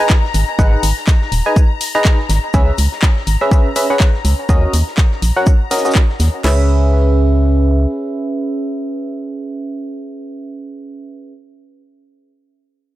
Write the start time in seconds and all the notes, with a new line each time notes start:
Already playing: A#5
0.00 D#4 G#4 B4 G#5
0.10 kick, snare, clap, shaker
0.25 snare
0.34 G#1, open hi-hat, shaker
0.59 G#1 D#4 G#4 B4 F#5, kick, shaker
0.83 G#1, open hi-hat, shaker
0.97 snare
1.07 kick, snare, clap, shaker
1.22 snare
1.32 D#1, open hi-hat, shaker
1.46 D#4 G#4 B4 G#5
1.56 kick, shaker
1.81 open hi-hat, shaker
1.95 D#4 G#4 B4 A#5
2.05 kick, snare, clap, shaker
2.19 snare
2.29 G#1, snare, open hi-hat, shaker
2.54 C#2 C#4 G#4 B4 E5, kick, shaker
2.78 C#2, open hi-hat, shaker
2.92 snare
3.02 kick, snare, clap, shaker
3.17 snare
3.27 G#1, open hi-hat, shaker
3.41 C#4 G#4 B4 E5
3.51 C#4 G#4 B4 E5, kick, shaker
3.76 C#4 G#4 B4 E5, open hi-hat, shaker
3.90 C#4 G#4 B4 F#5
4.00 kick, snare, clap, shaker
4.14 snare
4.25 C#2, open hi-hat, shaker
4.49 D#2 C#4 F#4 A#4 D#5, kick, shaker
4.73 D#2, open hi-hat, shaker
4.87 snare
4.97 kick, snare, clap, shaker
5.11 snare
5.22 A#1, open hi-hat, shaker
5.36 C#4 F#4 A#4 F#5
5.46 kick, shaker
5.71 C#4 F#4 A#4 D#5, snare, open hi-hat, shaker
5.77 snare, shaker
5.85 C#4 F#4 A#4 D#5, snare, shaker
5.90 snare, shaker
5.95 kick, snare, clap, shaker
6.09 snare
6.20 D#2, snare, open hi-hat, shaker
6.44 C#2 C#4 G#4 B4 E5, snare, crash